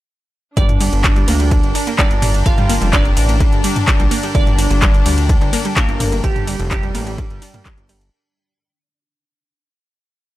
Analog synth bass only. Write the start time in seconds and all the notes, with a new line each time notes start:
0.57 G1
0.93 G1
1.28 D2
1.63 G1
2.11 G1
2.46 G1
2.81 F1
3.17 A1
3.52 G1
4.00 A#1
4.35 G1
4.70 G1
5.06 D2
5.41 G1
5.89 G1
6.24 G1
6.59 F1
6.95 A1
7.30 G1
7.78 G1